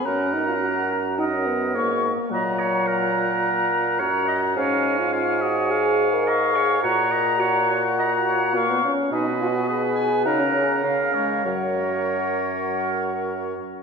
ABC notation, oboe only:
X:1
M:4/4
L:1/8
Q:1/4=106
K:F#
V:1 name="Oboe"
f4 d2 c z | f8 | e2 e d e2 e2 | f2 f4 e z |
d2 d g f2 e c | c6- c z |]